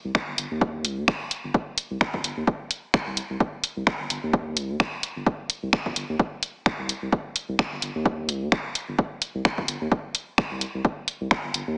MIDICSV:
0, 0, Header, 1, 3, 480
1, 0, Start_track
1, 0, Key_signature, -3, "minor"
1, 0, Tempo, 465116
1, 1593, Time_signature, 4, 2, 24, 8
1, 12154, End_track
2, 0, Start_track
2, 0, Title_t, "Sub bass"
2, 0, Program_c, 0, 38
2, 47, Note_on_c, 0, 36, 92
2, 111, Note_off_c, 0, 36, 0
2, 287, Note_on_c, 0, 31, 93
2, 351, Note_off_c, 0, 31, 0
2, 395, Note_on_c, 0, 31, 89
2, 475, Note_off_c, 0, 31, 0
2, 528, Note_on_c, 0, 39, 92
2, 874, Note_on_c, 0, 36, 82
2, 890, Note_off_c, 0, 39, 0
2, 1008, Note_on_c, 0, 39, 98
2, 1024, Note_off_c, 0, 36, 0
2, 1072, Note_off_c, 0, 39, 0
2, 1488, Note_on_c, 0, 31, 85
2, 1552, Note_off_c, 0, 31, 0
2, 1968, Note_on_c, 0, 36, 96
2, 2031, Note_off_c, 0, 36, 0
2, 2207, Note_on_c, 0, 31, 93
2, 2271, Note_off_c, 0, 31, 0
2, 2314, Note_on_c, 0, 31, 94
2, 2394, Note_off_c, 0, 31, 0
2, 2446, Note_on_c, 0, 39, 92
2, 2511, Note_off_c, 0, 39, 0
2, 3166, Note_on_c, 0, 36, 78
2, 3300, Note_off_c, 0, 36, 0
2, 3406, Note_on_c, 0, 36, 81
2, 3471, Note_off_c, 0, 36, 0
2, 3886, Note_on_c, 0, 36, 95
2, 3951, Note_off_c, 0, 36, 0
2, 4127, Note_on_c, 0, 31, 95
2, 4191, Note_off_c, 0, 31, 0
2, 4235, Note_on_c, 0, 31, 93
2, 4314, Note_off_c, 0, 31, 0
2, 4369, Note_on_c, 0, 39, 97
2, 4714, Note_on_c, 0, 36, 81
2, 4730, Note_off_c, 0, 39, 0
2, 4849, Note_on_c, 0, 39, 97
2, 4864, Note_off_c, 0, 36, 0
2, 4912, Note_off_c, 0, 39, 0
2, 5327, Note_on_c, 0, 31, 86
2, 5391, Note_off_c, 0, 31, 0
2, 5808, Note_on_c, 0, 36, 97
2, 5871, Note_off_c, 0, 36, 0
2, 6047, Note_on_c, 0, 31, 93
2, 6111, Note_off_c, 0, 31, 0
2, 6153, Note_on_c, 0, 31, 90
2, 6234, Note_off_c, 0, 31, 0
2, 6289, Note_on_c, 0, 39, 95
2, 6352, Note_off_c, 0, 39, 0
2, 7007, Note_on_c, 0, 36, 79
2, 7140, Note_off_c, 0, 36, 0
2, 7247, Note_on_c, 0, 36, 75
2, 7311, Note_off_c, 0, 36, 0
2, 7727, Note_on_c, 0, 36, 99
2, 7791, Note_off_c, 0, 36, 0
2, 7968, Note_on_c, 0, 31, 93
2, 8032, Note_off_c, 0, 31, 0
2, 8075, Note_on_c, 0, 31, 88
2, 8154, Note_off_c, 0, 31, 0
2, 8208, Note_on_c, 0, 39, 97
2, 8556, Note_on_c, 0, 36, 86
2, 8571, Note_off_c, 0, 39, 0
2, 8688, Note_on_c, 0, 39, 100
2, 8703, Note_off_c, 0, 36, 0
2, 8751, Note_off_c, 0, 39, 0
2, 9169, Note_on_c, 0, 31, 84
2, 9232, Note_off_c, 0, 31, 0
2, 9648, Note_on_c, 0, 36, 93
2, 9711, Note_off_c, 0, 36, 0
2, 9887, Note_on_c, 0, 31, 94
2, 9951, Note_off_c, 0, 31, 0
2, 9993, Note_on_c, 0, 31, 96
2, 10074, Note_off_c, 0, 31, 0
2, 10127, Note_on_c, 0, 39, 98
2, 10191, Note_off_c, 0, 39, 0
2, 10848, Note_on_c, 0, 36, 78
2, 10981, Note_off_c, 0, 36, 0
2, 11089, Note_on_c, 0, 36, 80
2, 11152, Note_off_c, 0, 36, 0
2, 11568, Note_on_c, 0, 36, 95
2, 11632, Note_off_c, 0, 36, 0
2, 11808, Note_on_c, 0, 31, 94
2, 11872, Note_off_c, 0, 31, 0
2, 11914, Note_on_c, 0, 31, 93
2, 11994, Note_off_c, 0, 31, 0
2, 12048, Note_on_c, 0, 39, 97
2, 12154, Note_off_c, 0, 39, 0
2, 12154, End_track
3, 0, Start_track
3, 0, Title_t, "Drums"
3, 153, Note_on_c, 9, 36, 108
3, 154, Note_on_c, 9, 26, 85
3, 256, Note_off_c, 9, 36, 0
3, 257, Note_off_c, 9, 26, 0
3, 393, Note_on_c, 9, 42, 84
3, 496, Note_off_c, 9, 42, 0
3, 633, Note_on_c, 9, 36, 116
3, 737, Note_off_c, 9, 36, 0
3, 873, Note_on_c, 9, 42, 89
3, 976, Note_off_c, 9, 42, 0
3, 1114, Note_on_c, 9, 26, 95
3, 1114, Note_on_c, 9, 36, 120
3, 1217, Note_off_c, 9, 26, 0
3, 1217, Note_off_c, 9, 36, 0
3, 1353, Note_on_c, 9, 42, 89
3, 1456, Note_off_c, 9, 42, 0
3, 1593, Note_on_c, 9, 36, 115
3, 1697, Note_off_c, 9, 36, 0
3, 1833, Note_on_c, 9, 42, 96
3, 1936, Note_off_c, 9, 42, 0
3, 2073, Note_on_c, 9, 36, 114
3, 2074, Note_on_c, 9, 26, 84
3, 2176, Note_off_c, 9, 36, 0
3, 2177, Note_off_c, 9, 26, 0
3, 2207, Note_on_c, 9, 36, 62
3, 2310, Note_off_c, 9, 36, 0
3, 2314, Note_on_c, 9, 42, 90
3, 2417, Note_off_c, 9, 42, 0
3, 2553, Note_on_c, 9, 36, 117
3, 2656, Note_off_c, 9, 36, 0
3, 2793, Note_on_c, 9, 42, 88
3, 2896, Note_off_c, 9, 42, 0
3, 3033, Note_on_c, 9, 26, 95
3, 3033, Note_on_c, 9, 36, 122
3, 3136, Note_off_c, 9, 26, 0
3, 3136, Note_off_c, 9, 36, 0
3, 3272, Note_on_c, 9, 42, 92
3, 3376, Note_off_c, 9, 42, 0
3, 3513, Note_on_c, 9, 36, 114
3, 3616, Note_off_c, 9, 36, 0
3, 3752, Note_on_c, 9, 42, 97
3, 3855, Note_off_c, 9, 42, 0
3, 3992, Note_on_c, 9, 26, 86
3, 3993, Note_on_c, 9, 36, 113
3, 4095, Note_off_c, 9, 26, 0
3, 4096, Note_off_c, 9, 36, 0
3, 4233, Note_on_c, 9, 42, 95
3, 4336, Note_off_c, 9, 42, 0
3, 4473, Note_on_c, 9, 36, 118
3, 4576, Note_off_c, 9, 36, 0
3, 4713, Note_on_c, 9, 42, 90
3, 4816, Note_off_c, 9, 42, 0
3, 4953, Note_on_c, 9, 26, 91
3, 4953, Note_on_c, 9, 36, 122
3, 5056, Note_off_c, 9, 26, 0
3, 5056, Note_off_c, 9, 36, 0
3, 5193, Note_on_c, 9, 42, 94
3, 5296, Note_off_c, 9, 42, 0
3, 5433, Note_on_c, 9, 36, 117
3, 5536, Note_off_c, 9, 36, 0
3, 5672, Note_on_c, 9, 42, 96
3, 5776, Note_off_c, 9, 42, 0
3, 5912, Note_on_c, 9, 26, 80
3, 5913, Note_on_c, 9, 36, 110
3, 6016, Note_off_c, 9, 26, 0
3, 6016, Note_off_c, 9, 36, 0
3, 6047, Note_on_c, 9, 36, 61
3, 6150, Note_off_c, 9, 36, 0
3, 6153, Note_on_c, 9, 42, 90
3, 6256, Note_off_c, 9, 42, 0
3, 6393, Note_on_c, 9, 36, 123
3, 6496, Note_off_c, 9, 36, 0
3, 6632, Note_on_c, 9, 42, 91
3, 6735, Note_off_c, 9, 42, 0
3, 6873, Note_on_c, 9, 26, 87
3, 6873, Note_on_c, 9, 36, 120
3, 6976, Note_off_c, 9, 26, 0
3, 6976, Note_off_c, 9, 36, 0
3, 7113, Note_on_c, 9, 42, 91
3, 7216, Note_off_c, 9, 42, 0
3, 7353, Note_on_c, 9, 36, 112
3, 7456, Note_off_c, 9, 36, 0
3, 7593, Note_on_c, 9, 42, 92
3, 7696, Note_off_c, 9, 42, 0
3, 7833, Note_on_c, 9, 26, 79
3, 7833, Note_on_c, 9, 36, 108
3, 7936, Note_off_c, 9, 26, 0
3, 7936, Note_off_c, 9, 36, 0
3, 8073, Note_on_c, 9, 42, 89
3, 8176, Note_off_c, 9, 42, 0
3, 8313, Note_on_c, 9, 36, 112
3, 8416, Note_off_c, 9, 36, 0
3, 8553, Note_on_c, 9, 42, 83
3, 8656, Note_off_c, 9, 42, 0
3, 8793, Note_on_c, 9, 26, 85
3, 8793, Note_on_c, 9, 36, 117
3, 8896, Note_off_c, 9, 26, 0
3, 8896, Note_off_c, 9, 36, 0
3, 9033, Note_on_c, 9, 42, 87
3, 9136, Note_off_c, 9, 42, 0
3, 9273, Note_on_c, 9, 36, 108
3, 9376, Note_off_c, 9, 36, 0
3, 9512, Note_on_c, 9, 42, 89
3, 9615, Note_off_c, 9, 42, 0
3, 9753, Note_on_c, 9, 26, 82
3, 9753, Note_on_c, 9, 36, 101
3, 9856, Note_off_c, 9, 26, 0
3, 9856, Note_off_c, 9, 36, 0
3, 9887, Note_on_c, 9, 36, 58
3, 9990, Note_off_c, 9, 36, 0
3, 9993, Note_on_c, 9, 42, 86
3, 10096, Note_off_c, 9, 42, 0
3, 10233, Note_on_c, 9, 36, 110
3, 10336, Note_off_c, 9, 36, 0
3, 10472, Note_on_c, 9, 42, 87
3, 10575, Note_off_c, 9, 42, 0
3, 10712, Note_on_c, 9, 26, 84
3, 10713, Note_on_c, 9, 36, 113
3, 10816, Note_off_c, 9, 26, 0
3, 10817, Note_off_c, 9, 36, 0
3, 10952, Note_on_c, 9, 42, 86
3, 11056, Note_off_c, 9, 42, 0
3, 11193, Note_on_c, 9, 36, 108
3, 11297, Note_off_c, 9, 36, 0
3, 11433, Note_on_c, 9, 42, 83
3, 11536, Note_off_c, 9, 42, 0
3, 11672, Note_on_c, 9, 26, 82
3, 11674, Note_on_c, 9, 36, 101
3, 11775, Note_off_c, 9, 26, 0
3, 11777, Note_off_c, 9, 36, 0
3, 11912, Note_on_c, 9, 42, 84
3, 12015, Note_off_c, 9, 42, 0
3, 12154, End_track
0, 0, End_of_file